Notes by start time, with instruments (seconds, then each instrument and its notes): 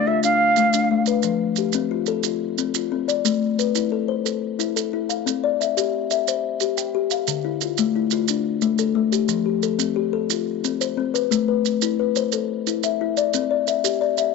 Already playing: kalimba D4
0.07 kalimba F4, native american-style wooden flute E5
0.23 kalimba D4, native american-style wooden flute F5, maracas
0.56 kalimba A3, maracas
0.73 kalimba D4, maracas
0.91 kalimba A3
1.06 kalimba B4, maracas
1.23 kalimba F3, maracas
1.56 kalimba G4, maracas
1.72 kalimba C4, maracas
1.91 kalimba F4
2.06 kalimba A4, maracas
2.23 kalimba F4, maracas
2.58 kalimba C4, maracas
2.74 kalimba F4, maracas
2.92 kalimba C4
3.08 kalimba D5, maracas
3.25 kalimba A3, maracas
3.59 kalimba B4, maracas
3.75 kalimba E4, maracas
3.92 kalimba A4
4.08 kalimba C5
4.25 kalimba A4, maracas
4.59 kalimba E4, maracas
4.76 kalimba A4, maracas
4.93 kalimba E4
5.09 kalimba F5, maracas
5.26 kalimba C4, maracas
5.44 kalimba D5
5.61 kalimba E5, maracas
5.77 kalimba G4, maracas
6.11 kalimba E5, maracas
6.28 kalimba C5, maracas
6.60 kalimba G4, maracas
6.77 kalimba G5, maracas
6.95 kalimba G4
7.11 kalimba F5, maracas
7.27 kalimba D3, maracas
7.45 kalimba E4
7.61 kalimba F4, maracas
7.78 kalimba A3, maracas
7.96 kalimba E4
8.11 kalimba F4, maracas
8.28 kalimba D4, maracas
8.62 kalimba A3, maracas
8.78 kalimba A4, maracas
8.95 kalimba A3
9.12 kalimba G4, maracas
9.28 kalimba F3, maracas
9.46 kalimba G4
9.63 kalimba A4, maracas
9.79 kalimba C4, maracas
9.96 kalimba G4
10.13 kalimba A4
10.30 kalimba F4, maracas
10.64 kalimba C4, maracas
10.81 kalimba C5, maracas
10.97 kalimba C4
11.14 kalimba B4, maracas
11.31 kalimba A3, maracas
11.48 kalimba B4
11.65 maracas
11.82 kalimba E4, maracas
11.99 kalimba B4
12.16 kalimba C5, maracas
12.32 kalimba A4, maracas
12.67 kalimba E4, maracas
12.83 kalimba E5, maracas
13.01 kalimba E4
13.17 kalimba D5, maracas
13.34 kalimba C4, maracas
13.51 kalimba D5
13.67 kalimba E5, maracas
13.84 kalimba G4, maracas
14.01 kalimba D5
14.18 kalimba E5, maracas